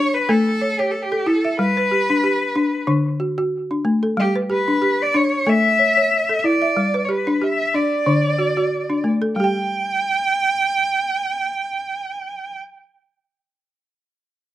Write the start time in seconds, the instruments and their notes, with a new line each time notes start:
Already playing: balafon D4 G4, cello C#5
0.14 cello B4
0.29 balafon A3 A4, cello A4
0.61 balafon C#5
0.79 cello G4, balafon C#5
0.91 cello A4
1.03 cello G4
1.12 balafon A4
1.26 balafon E4, cello A4
1.45 balafon E5
1.59 balafon G3, cello B4
1.77 balafon B4
1.91 balafon G4
2.10 balafon D4
2.24 balafon G4
2.56 balafon D4
2.87 balafon D3 D4
3.20 balafon F#4
3.38 balafon F#4
3.71 balafon D4
3.85 balafon A3
4.03 balafon A4
4.17 balafon G3, cello G4
4.36 balafon B4
4.50 balafon G4, cello B4
4.68 balafon D4
4.82 balafon G4
5.02 cello D5
5.14 balafon D4, cello C#5
5.47 balafon A3 A4, cello E5
5.79 balafon C#5
5.97 balafon C#5
6.29 balafon A4
6.39 cello E5
6.44 balafon E4, cello D5
6.62 balafon E5
6.77 balafon G3
6.94 balafon B4
7.04 cello C#5
7.09 balafon G4, cello B4
7.27 balafon D4
7.41 balafon G4, cello E5
7.74 balafon D4, cello D5
8.06 balafon D3 D4
8.38 balafon F#4
8.57 balafon F#4
8.90 balafon D4
9.04 balafon A3
9.22 balafon A4
9.36 balafon G3 G4, cello G5
9.44 balafon G5